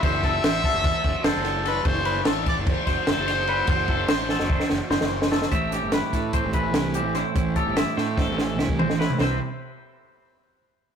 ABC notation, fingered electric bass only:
X:1
M:9/8
L:1/16
Q:3/8=98
K:Ador
V:1 name="Fingered electric bass" clef=bass
F,,,4 A,,,3 F,,,2 z F,,, z F,,, F,,,4- F,,, | F,,,4 A,,,3 F,,,2 z F,,, z F,,, F,,,4- F,,, | F,,,4 A,,,3 F,,,2 z F,,, z F,,, F,,,4- F,,, | A,,,3 G,,,2 z A,,3 A,,,3 C,,3 A,,,2 z |
A,,,3 G,,,2 z A,,3 A,,,3 C,,3 A,,,2 z | C,,2 z16 |]